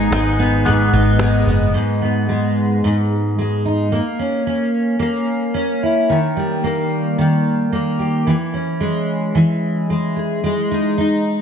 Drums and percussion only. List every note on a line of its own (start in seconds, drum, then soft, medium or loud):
0.00 cajon slap soft
0.12 cajon slap loud
0.40 cajon slap soft
0.55 cajon slap soft
0.66 cajon bass medium
0.94 cajon bass medium
1.08 cajon slap soft
1.19 cajon slap loud
1.47 cajon slap soft